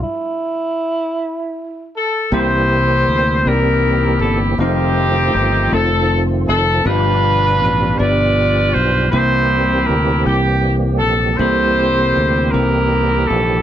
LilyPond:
<<
  \new Staff \with { instrumentName = "Horn section" } { \time 6/8 \key c \mixolydian \tempo 4. = 53 << { r2 r8 a'8 | c''4. bes'4 a'8 | g'4. a'8 r8 a'8 | b'4. d''4 c''8 |
c''4 bes'8 g'8 r8 a'8 | c''4. bes'4 a'8 | } \\ { r2. | <e' g'>4. <e' g'>4. | <c' ees'>4. r4. | <d' f'>4. <f' b'>4. |
<e' g'>4. r4. | <e' g'>4. <e' g'>4. | } >> }
  \new Staff \with { instrumentName = "Alto saxophone" } { \time 6/8 \key c \mixolydian e'2~ e'8 r8 | r2. | r2. | r2. |
r2. | r2. | }
  \new Staff \with { instrumentName = "Tine electric piano" } { \time 6/8 \key c \mixolydian r2. | <c bes c' e' g' c''>4. <bes c' ees' e' g' d''>4. | <a c' ees' f' c''>4. <a c' ees' f' c''>4. | <g, b d' f' g' d''>4. <b d' f' g' b'>4. |
<c bes c' e' g' c''>4. <bes c' e' g' bes'>4. | <c bes c' e' g' a'>4. <bes c' ees' e' g' c''>4. | }
  \new Staff \with { instrumentName = "Tonewheel organ" } { \time 6/8 \key c \mixolydian r2. | <e g bes c' g'>2. | <ees f a c' f'>2. | <b, f g bes d' g'>2. |
<e g bes c' g'>2.~ | <e g bes c' g'>2. | }
  \new Staff \with { instrumentName = "Fingered electric bass" } { \clef bass \time 6/8 \key c \mixolydian r2. | c,4 d,8 c,4 g,,8 | f,,4 g,,8 f,,4 f,,8 | g,,4 a,,8 g,,4 b,,8 |
c,4 d,8 c,4 bes,,8 | c,4 d,8 c,4 bes,,8 | }
>>